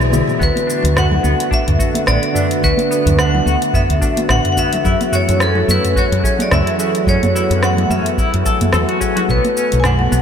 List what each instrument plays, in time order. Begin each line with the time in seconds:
Already playing: fretless electric bass B1, analog synth pad D3 G#3 B3 E4, tine electric piano E3 E4 F#4 G#4 D5 E5, synth texture G#5 G#6
0.01 shaker
0.11 tine electric piano E3 E4 F#4 G#4 E5, high tom, high conga, shaker
0.27 mid tom, muted conga, low conga, shaker
0.38 fretless electric bass D2, tine electric piano D3 D4 F#4 B4 E5, analog synth pad D3 A3 B3 F#4, clean electric guitar B3, kick, shaker
0.43 vibraphone B4
0.56 closed hi-hat, high conga, shaker
0.67 clean electric guitar D4, shaker
0.83 fretless electric bass D2, closed hi-hat, low conga, shaker
0.96 clean electric guitar F#4, vibraphone F#5, cross-stick, mid tom, shaker
1.11 low conga
1.23 fretless electric bass D2, clean electric guitar B3, high conga, shaker
1.40 closed hi-hat, shaker
1.51 clean electric guitar D4, vibraphone E5, kick, shaker
1.68 fretless electric bass D2, closed hi-hat, mid tom
1.78 tine electric piano D3 D4 F#4 B4 E5, clean electric guitar F#4, kick, shaker
1.94 closed hi-hat, high conga, shaker
2.06 fretless electric bass A1, clean electric guitar B3, vibraphone D5, cross-stick, muted conga, shaker
2.23 closed hi-hat
2.33 tine electric piano D3 D4 F#4 B4 E5, clean electric guitar D4, mid tom, shaker
2.51 closed hi-hat, shaker
2.61 fretless electric bass D2, tine electric piano D3 D4 F#4 B4 E5, clean electric guitar F#4, vibraphone B4, kick, shaker
2.77 closed hi-hat, high conga, shaker
2.91 clean electric guitar B3, shaker
3.06 fretless electric bass D2, closed hi-hat, mid tom, low conga, shaker
3.19 clean electric guitar D4, vibraphone F#5, cross-stick, shaker
3.35 low conga
3.46 fretless electric bass D2, clean electric guitar F#4, high conga, shaker
3.62 closed hi-hat, shaker
3.74 clean electric guitar B3, vibraphone E5, kick, mid tom, shaker
3.90 fretless electric bass D2, closed hi-hat
4.00 tine electric piano D3 D4 F#4 B4 E5, clean electric guitar D4, kick, shaker
4.17 closed hi-hat, high conga, shaker
4.29 fretless electric bass A1, clean electric guitar F#4, vibraphone F#5, cross-stick, shaker
4.45 closed hi-hat, mid tom
4.52 vibraphone F#5
4.57 tine electric piano D3 D4 F#4 B4 E5, clean electric guitar B3, vibraphone E5, kick, shaker
4.73 closed hi-hat, muted conga, low conga, shaker
4.82 fretless electric bass F#2, analog synth pad E3 C#4 F#4, tine electric piano F#3 F#4 G#4 A4 E5, clean electric guitar E4, kick, shaker
5.01 closed hi-hat, high conga, shaker
5.12 clean electric guitar F#4, vibraphone C#5, mid tom, shaker
5.28 fretless electric bass F#2, closed hi-hat, low conga, shaker
5.40 clean electric guitar C#4, vibraphone A4, cross-stick, shaker
5.55 low conga
5.68 fretless electric bass F#2, clean electric guitar E4, vibraphone B4, high conga, shaker
5.85 closed hi-hat, mid tom, shaker
5.96 clean electric guitar F#4, vibraphone C#5, kick, shaker
6.12 fretless electric bass F#2, closed hi-hat
6.22 tine electric piano F#3 F#4 G#4 A4 E5, clean electric guitar C#4, kick, shaker
6.39 vibraphone D5, closed hi-hat, high conga, shaker
6.51 fretless electric bass C#2, clean electric guitar E4, vibraphone E5, cross-stick, mid tom, muted conga, shaker
6.67 closed hi-hat
6.78 tine electric piano F#3 F#4 G#4 A4 E5, clean electric guitar F#4, shaker
6.95 closed hi-hat, shaker
7.05 fretless electric bass F#2, tine electric piano F#3 F#4 G#4 A4 E5, analog synth pad B3, clean electric guitar C#4, vibraphone C#5, kick, shaker
7.23 closed hi-hat, mid tom, high conga, shaker
7.35 clean electric guitar E4, shaker
7.50 fretless electric bass F#2, closed hi-hat, low conga, shaker
7.63 clean electric guitar F#4, vibraphone F#5, cross-stick, shaker
7.77 closed hi-hat, low conga
7.90 fretless electric bass F#2, clean electric guitar C#4, vibraphone E5, mid tom, high conga, shaker
8.06 closed hi-hat, shaker
8.18 clean electric guitar E4, kick, shaker
8.34 fretless electric bass F#2, closed hi-hat
8.45 tine electric piano F#3 F#4 A4 F#5 G#5, clean electric guitar A4, kick, shaker
8.61 closed hi-hat, mid tom, high conga, shaker
8.73 fretless electric bass E2, clean electric guitar A4, cross-stick, shaker
8.89 clean electric guitar F#4, closed hi-hat
9.00 tine electric piano F#3 F#4 G#4 A4 F#5, clean electric guitar C#4, kick, shaker
9.16 clean electric guitar F#4, closed hi-hat, muted conga, low conga, shaker
9.27 fretless electric bass B1, tine electric piano B3 F#4 A4 C#5, analog synth pad B3, clean electric guitar B3, vibraphone B4, kick, shaker
9.44 closed hi-hat, high conga, shaker
9.57 clean electric guitar C#4, shaker
9.72 fretless electric bass B1, closed hi-hat, low conga, shaker
9.80 vibraphone G#5, cross-stick, mid tom
9.84 clean electric guitar D4, vibraphone F#5, shaker
9.99 low conga
10.11 fretless electric bass B1, clean electric guitar B3, high conga, shaker